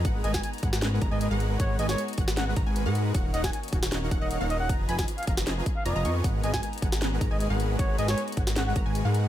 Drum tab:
HH |x---x---x-xxx---x---x---x---x---|x---x---x-xxx---x---x---x---x---|x---x---x-xxx---x---x---x---x---|x---x---x-xxx---x---x---x---x---|
SD |------o-------o-o---------------|------o-------o-o---------------|------o-------o-o---------------|------o-------o-o---------------|
BD |o-----o-----o-------o-----------|o-----------o-------o-----------|o-----o-----o-------o-----------|o-----o-----o-------o-----------|

HH |x---x---x-xxx---x---x---x---x---|x---x---x-xxx---x---x---x---x---|
SD |------o-------o-o---------------|------o-------o-o---------------|
BD |o-----o-----o-------o-----------|o-----------o-------o-----------|